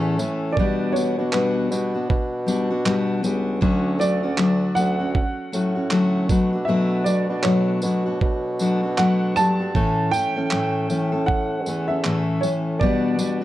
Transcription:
Already playing: bassoon E2, steel-string acoustic guitar A2 E3 A3 C#4 A4, upright piano E5
0.18 bassoon A2, steel-string acoustic guitar E3 A3 C#4, tambourine
0.22 steel-string acoustic guitar A4
0.52 upright piano D5
0.57 bassoon B2, steel-string acoustic guitar B2 G3 B3 D4 F#4, kick
0.92 steel-string acoustic guitar G3, upright piano C#5, tambourine
0.97 steel-string acoustic guitar B3 D4 F#4
1.18 bassoon B2, steel-string acoustic guitar B3 D4 F#4
1.32 steel-string acoustic guitar B2 G3 B3 D4 F#4, upright piano B4, clap
1.71 bassoon B2, steel-string acoustic guitar G3 B3 D4 F#4, tambourine
1.94 steel-string acoustic guitar B3 D4 F#4
2.10 bassoon B2, kick
2.46 steel-string acoustic guitar G3 B3 D4 F#4, tambourine
2.70 steel-string acoustic guitar B3 D4 F#4
2.85 steel-string acoustic guitar B2 G3 B3 D4 F#4, clap
3.23 bassoon C#2, steel-string acoustic guitar G3 B3 D4 F#4, tambourine
3.61 bassoon D2, steel-string acoustic guitar D3 F#3 A3 C#4 F#4, kick
3.99 steel-string acoustic guitar F#3 A3 C#4 F#4, upright piano D5, tambourine
4.23 bassoon D2, steel-string acoustic guitar A3 C#4 F#4
4.38 steel-string acoustic guitar D3 F#3 A3 F#4, clap
4.75 bassoon D2, steel-string acoustic guitar F#3 A3 C#4 F#4, upright piano F#5, tambourine
4.99 steel-string acoustic guitar A3 C#4 F#4
5.15 kick
5.52 bassoon A2, steel-string acoustic guitar F#3 A3 C#4 F#4, tambourine
5.75 steel-string acoustic guitar A3 C#4 F#4
5.91 steel-string acoustic guitar D3 F#3 A3 C#4 F#4, clap
6.29 bassoon B2, steel-string acoustic guitar F#3 A3 D4 F#4, kick, tambourine
6.53 steel-string acoustic guitar A3 D4 F#4
6.65 steel-string acoustic guitar B2 F#3 A3 D4, bassoon B2, upright piano E5
6.69 steel-string acoustic guitar F#4
7.04 steel-string acoustic guitar F#3 A3 D4 F#4, upright piano D5, tambourine
7.29 bassoon B2, steel-string acoustic guitar A3 D4 F#4
7.43 steel-string acoustic guitar B2 F#3 A3 D4 F#4, upright piano C#5, clap
7.82 bassoon B2, steel-string acoustic guitar F#3 A3 D4 F#4, tambourine
8.06 steel-string acoustic guitar A3 D4 F#4
8.21 bassoon B2, kick
8.59 steel-string acoustic guitar F#3 A3 D4 F#4, tambourine
8.83 steel-string acoustic guitar A3 D4 F#4
8.97 steel-string acoustic guitar B2 F#3 A3 D4 F#4, upright piano F#5, clap
9.36 bassoon G2, steel-string acoustic guitar F#3 A3 D4 F#4, upright piano A5, tambourine
9.59 steel-string acoustic guitar A3 D4 F#4
9.75 steel-string acoustic guitar A2 E3 A3 C#4 A4, bassoon A2, kick
10.11 steel-string acoustic guitar E3 A3 C#4 A4, upright piano G5, tambourine
10.36 bassoon A2, steel-string acoustic guitar A3 C#4 A4
10.51 steel-string acoustic guitar A2 E3 A3 C#4 A4, clap
10.90 bassoon A2, steel-string acoustic guitar E3 A3 C#4 A4, tambourine
11.12 steel-string acoustic guitar A3 C#4 A4
11.26 upright piano F#5, kick
11.66 bassoon E2, steel-string acoustic guitar E3 A3 C#4 A4, tambourine
11.88 steel-string acoustic guitar A3 C#4 A4, upright piano E5
12.04 steel-string acoustic guitar A2 E3 A3 C#4 A4, clap
12.41 bassoon A2, steel-string acoustic guitar E3 A3 C#4, upright piano C#5, tambourine
12.45 steel-string acoustic guitar A4
12.80 steel-string acoustic guitar B2 G3 B3 D4 F#4, bassoon B2, upright piano D5, kick
13.19 steel-string acoustic guitar G3 B3 D4 F#4, tambourine
13.41 steel-string acoustic guitar F#4

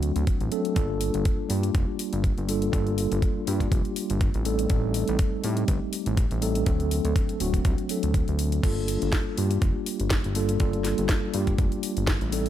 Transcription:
Already playing: analog synth bass D2, tine electric piano F#3 A3 C4 D4 F#4
0.03 closed hi-hat
0.16 analog synth bass D2, closed hi-hat
0.27 kick, closed hi-hat
0.41 analog synth bass A1, closed hi-hat
0.51 tine electric piano F#3 A3 C4 D4 A4, closed hi-hat
0.65 closed hi-hat
0.75 analog synth bass G1, tine electric piano G3 A#3 D4 F4 A4, kick, closed hi-hat
1.01 open hi-hat
1.14 analog synth bass G1, closed hi-hat
1.25 kick, closed hi-hat
1.49 analog synth bass G2, tine electric piano G3 A#3 D4 F4 G4, open hi-hat
1.63 closed hi-hat
1.75 analog synth bass F1, kick, closed hi-hat
1.99 open hi-hat
2.13 analog synth bass G1, closed hi-hat
2.24 kick, closed hi-hat
2.38 analog synth bass G1, closed hi-hat
2.48 tine electric piano G3 A#3 D4 F4 A4, open hi-hat
2.62 closed hi-hat
2.72 analog synth bass G1, tine electric piano G3 A#3 D4 F4 A4, kick, closed hi-hat
2.87 closed hi-hat
2.98 open hi-hat
3.12 analog synth bass G1, closed hi-hat
3.22 kick, closed hi-hat
3.46 analog synth bass G2, tine electric piano G3 A#3 D4 F4 G4, open hi-hat
3.60 kick, closed hi-hat
3.72 analog synth bass F1, kick, closed hi-hat
3.85 closed hi-hat
3.96 open hi-hat
4.10 analog synth bass G1, closed hi-hat
4.21 kick, closed hi-hat
4.34 analog synth bass A1, closed hi-hat
4.45 tine electric piano G3 A3 C4 D#4 A4, open hi-hat
4.59 closed hi-hat
4.69 analog synth bass A1, tine electric piano G3 A3 C4 D#4 A4, kick, closed hi-hat
4.94 open hi-hat
5.08 analog synth bass A1, closed hi-hat
5.19 kick, closed hi-hat
5.43 analog synth bass A2, tine electric piano G3 A3 C4 D#4 G4, open hi-hat
5.57 closed hi-hat
5.68 analog synth bass G1, kick, closed hi-hat
5.93 open hi-hat
6.06 analog synth bass A1, closed hi-hat
6.17 kick, closed hi-hat
6.31 analog synth bass A1, closed hi-hat
6.41 tine electric piano G3 A3 C4 D#4 A4, open hi-hat
6.55 closed hi-hat
6.66 analog synth bass D2, tine electric piano F#3 A3 C4 D4 A4, kick, closed hi-hat
6.80 closed hi-hat
6.91 open hi-hat
7.05 analog synth bass D2, closed hi-hat
7.16 kick, closed hi-hat
7.29 closed hi-hat
7.40 analog synth bass D1, tine electric piano F#3 A3 C4 D4 F#4, open hi-hat
7.54 kick, closed hi-hat
7.65 analog synth bass C2, kick, closed hi-hat
7.78 closed hi-hat
7.89 tine electric piano F#3 A3 C4 D4 A4, open hi-hat
8.03 analog synth bass D2, closed hi-hat
8.14 kick, closed hi-hat
8.28 analog synth bass D2, closed hi-hat
8.39 open hi-hat
8.52 closed hi-hat
8.63 analog synth bass G1, tine electric piano G3 A#3 D4 F4 A4, kick, closed hi-hat, crash
8.88 open hi-hat
9.02 analog synth bass G1, closed hi-hat
9.12 kick, snare, closed hi-hat
9.37 analog synth bass G2, tine electric piano G3 A#3 D4 F4 G4, open hi-hat
9.51 closed hi-hat
9.62 analog synth bass F1, kick, closed hi-hat
9.86 open hi-hat
10.00 analog synth bass G1, closed hi-hat
10.10 kick, snare, closed hi-hat
10.24 analog synth bass G1, closed hi-hat
10.35 tine electric piano G3 A#3 D4 F4 A4, open hi-hat
10.49 closed hi-hat
10.60 analog synth bass G1, tine electric piano G3 A#3 D4 F4 A4, kick, closed hi-hat
10.73 closed hi-hat
10.84 snare, open hi-hat
10.98 analog synth bass G1, closed hi-hat
11.09 kick, snare, closed hi-hat
11.33 analog synth bass G2, tine electric piano G3 A#3 D4 F4 G4, open hi-hat
11.47 kick, closed hi-hat
11.58 analog synth bass F1, kick, closed hi-hat
11.72 closed hi-hat
11.83 open hi-hat
11.97 analog synth bass G1, closed hi-hat
12.07 kick, snare, closed hi-hat
12.21 analog synth bass A1, closed hi-hat
12.32 tine electric piano G3 A3 C4 D#4 A4, open hi-hat
12.46 closed hi-hat

